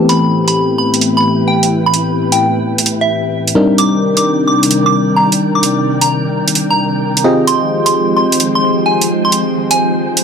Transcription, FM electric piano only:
0.00 3.53 E3 medium
0.00 3.53 A3 medium
0.00 3.53 B3 medium
0.00 3.53 C4 medium
0.00 3.53 G4 medium
3.55 7.23 G3 medium
3.55 7.23 C4 medium
3.55 7.23 D4 medium
3.55 7.23 D#4 medium
3.55 7.23 A#4 medium
7.24 10.24 C4 medium
7.24 10.24 F4 medium
7.24 10.24 G4 medium
7.24 10.24 G#4 medium
7.24 10.24 D#5 medium

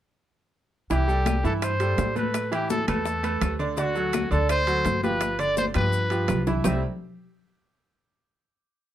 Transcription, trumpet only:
0.92 1.41 G4 medium
1.46 1.53 A4 medium
1.63 2.13 C5 medium
2.18 2.50 B4 medium
2.54 2.70 G4 medium
2.70 2.87 A4 loud
2.88 3.56 A4 medium
3.78 4.28 F#4 medium
4.32 4.49 A4 loud
4.50 5.00 C5 loud
5.04 5.41 B4 medium
5.40 5.58 D5 medium
5.58 5.66 C5 medium
5.76 6.44 B4 loud
6.65 6.82 E5 medium

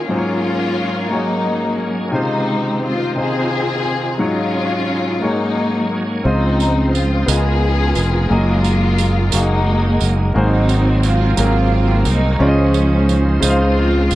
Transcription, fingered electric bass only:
6.25 7.24 C#2 medium
7.28 7.93 C#2 medium
7.96 8.28 F1 medium
8.31 9.30 F#1 medium
9.34 9.98 F#1 medium
10.02 10.33 F#1 medium
10.36 11.35 G#1 medium
11.38 12.03 G#1 medium
12.06 12.38 C2 medium
12.40 13.39 C#2 medium
13.42 14.07 C#2 medium
14.12 14.15 F#1 medium

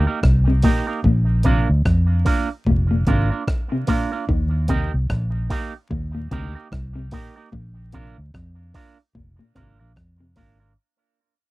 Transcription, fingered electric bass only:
0.23 0.60 C2 medium
1.04 1.65 A#1 loud
1.70 1.84 D2 medium
1.86 2.23 F2 medium
2.67 3.04 F1 loud
3.07 3.29 G#1 medium
4.29 4.90 D#2 loud
4.94 5.09 C2 medium
5.10 5.47 A#1 medium
5.91 6.28 D#2 medium
6.32 6.54 D2 medium
6.72 7.09 C2 loud
7.53 8.14 A#1 loud
8.18 8.33 D2 medium
8.34 8.71 F2 medium
9.15 9.37 F1 medium
9.56 9.78 G#1 medium
9.81 9.95 A#1 medium
9.97 10.34 F2 loud
10.37 10.74 G#1 medium

